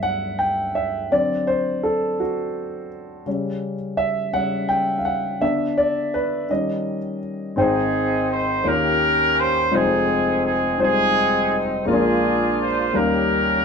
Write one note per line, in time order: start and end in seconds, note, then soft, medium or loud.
0.00 1.13 G2 soft
0.00 1.11 F#3 soft
0.00 1.13 B3 soft
0.00 0.75 E5 medium
0.00 0.40 F#5 loud
0.39 0.72 G5 medium
0.75 1.12 E5 medium
1.11 3.22 D3 soft
1.11 3.23 F#3 soft
1.11 3.23 C4 medium
1.11 1.48 D5 medium
1.47 1.84 C5 medium
1.83 2.20 A4 medium
2.20 2.87 F#4 medium
3.26 3.74 C#3 medium
3.26 3.74 G3 soft
3.26 3.75 C#4 medium
3.97 4.35 E5 medium
4.33 4.66 C#3 soft
4.33 4.66 G3 soft
4.33 4.66 C#4 soft
4.33 4.71 F#5 loud
4.69 4.96 G5 medium
4.98 5.06 F5 medium
5.05 5.42 F#5 medium
5.41 6.45 D3 medium
5.41 6.45 B3 medium
5.41 6.46 D4 medium
5.41 5.75 E5 medium
5.78 6.15 D5 medium
6.14 6.47 B4 medium
6.49 6.97 D#3 medium
6.49 6.97 G3 medium
6.49 6.98 C#4 medium
6.49 7.18 D#5 medium
7.56 8.61 G#1 medium
7.56 8.61 G#2 medium
7.56 8.36 G#3 medium
7.56 8.36 C4 medium
7.56 8.61 C4 medium
7.56 8.36 D#4 medium
7.56 8.61 D#4 medium
7.56 8.26 G#4 medium
7.56 8.37 C5 medium
7.56 8.37 G5 medium
8.31 8.66 C5 medium
8.63 9.68 D#2 medium
8.63 9.68 D#3 medium
8.63 9.43 A#3 medium
8.63 9.44 C#4 medium
8.63 9.68 C#4 medium
8.63 9.44 D#4 medium
8.63 8.71 F4 soft
8.63 9.68 G4 medium
8.63 9.37 A#4 loud
8.63 9.44 C#5 medium
8.71 9.47 G4 medium
9.39 9.73 C5 loud
9.71 11.82 F1 medium
9.71 11.83 F2 medium
9.71 9.78 G3 medium
9.71 10.51 C4 medium
9.71 10.76 C4 medium
9.71 10.51 D#4 medium
9.71 10.76 D#4 medium
9.71 10.51 F4 medium
9.71 10.44 G#4 medium
9.71 10.52 C5 medium
9.77 10.54 G#3 medium
10.46 10.78 G#4 medium
10.78 10.85 G3 medium
10.78 11.58 C4 medium
10.78 11.83 C4 medium
10.78 11.58 D#4 medium
10.78 11.83 D#4 medium
10.78 11.59 F4 medium
10.78 11.57 G#4 loud
10.78 11.59 C5 medium
10.84 11.61 G#3 medium
11.85 12.90 A#1 medium
11.85 12.90 A#2 medium
11.85 12.65 G#3 medium
11.85 12.65 A#3 medium
11.85 11.93 C#4 medium
11.85 12.90 D4 medium
11.85 12.66 F4 medium
11.85 12.91 F4 medium
11.85 12.66 A#4 medium
11.89 12.69 D4 medium
11.89 12.56 G#4 medium
12.61 12.95 C5 medium
12.92 13.65 D#2 medium
12.92 13.65 D#3 medium
12.92 13.65 G3 medium
12.92 13.65 A#3 medium
12.92 13.65 C#4 medium
12.92 13.65 D#4 medium
12.92 13.65 G4 medium
12.92 13.65 A#4 medium
12.92 13.65 A#4 loud